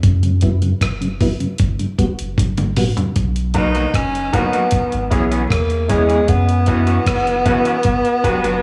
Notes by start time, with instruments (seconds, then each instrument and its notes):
0.03 sub bass F#2, kick, closed hi-hat
0.23 tonewheel organ F#2 C#3, closed hi-hat
0.41 tonewheel organ F#3 B3 E4, kick, closed hi-hat
0.62 tonewheel organ F#2 C#3, closed hi-hat
0.81 sub bass F#1, kick, cross-stick, closed hi-hat
1.00 tonewheel organ F#2 C#3, closed hi-hat
1.21 tonewheel organ F#3 B3 E4, kick, open hi-hat
1.40 tonewheel organ F#2 C#3, closed hi-hat
1.58 sub bass G1, kick, closed hi-hat
1.79 tonewheel organ G2 D3, closed hi-hat
1.98 sub bass E1, tonewheel organ G3 B3 F#4, kick, closed hi-hat
2.19 sub bass F#1, closed hi-hat
2.38 sub bass G1, kick, closed hi-hat, high tom
2.57 tonewheel organ G2 D3, closed hi-hat, mid tom
2.76 tonewheel organ G3 B3 F#4, mid tom, open hi-hat
2.97 tonewheel organ G2 D3, closed hi-hat, floor tom
3.16 sub bass B1, kick, closed hi-hat
3.36 closed hi-hat
3.54 clean electric guitar F#3 A#3 D#4 F#4, upright piano D#4 A#4 B4, tenor saxophone D#4, kick, closed hi-hat
3.74 clean electric guitar F#3 A#3 D#4 F#4, closed hi-hat
3.94 sub bass F#1, tenor saxophone C#4, kick, cross-stick, closed hi-hat
4.15 closed hi-hat
4.33 clean electric guitar F#3 A#3 D#4 F#4, tenor saxophone B3, upright piano D#4 A#4 B4, kick, closed hi-hat
4.53 clean electric guitar F#3 A#3 D#4 F#4, closed hi-hat
4.71 kick, closed hi-hat
4.92 sub bass G#1, closed hi-hat
5.10 sub bass B1, clean electric guitar E3 B3 C#4 G#4, upright piano E4 G#4 C#5, kick, closed hi-hat
5.31 clean electric guitar E3 B3 C#4 G#4, closed hi-hat
5.50 sub bass E2, tenor saxophone A#3, kick, cross-stick, closed hi-hat
5.70 closed hi-hat
5.88 clean electric guitar E3 B3 C#4 G#4, tenor saxophone G#3, upright piano E4 G#4 C#5, kick, closed hi-hat
6.08 clean electric guitar E3 B3 C#4 G#4, upright piano G#4 C#5, closed hi-hat
6.28 sub bass F#2, tenor saxophone B3, kick, closed hi-hat
6.49 closed hi-hat
6.66 clean electric guitar E3 B3 C#4 F#4, upright piano E4 F#4 B4, kick, closed hi-hat
6.87 clean electric guitar E3 B3 C#4 F#4, closed hi-hat
7.06 sub bass F#1, kick, cross-stick, closed hi-hat
7.27 closed hi-hat
7.45 clean electric guitar E3 B3 C#4 F#4, upright piano E4 F#4 B4, kick, closed hi-hat
7.65 clean electric guitar E3 B3 C#4 F#4, closed hi-hat
7.83 sub bass G1, kick, closed hi-hat
8.05 closed hi-hat
8.22 sub bass E1, clean electric guitar F#3 B3 D4 F#4, upright piano F#4 G4 B4, kick, closed hi-hat
8.44 sub bass F#1, clean electric guitar F#3 B3 D4 F#4, closed hi-hat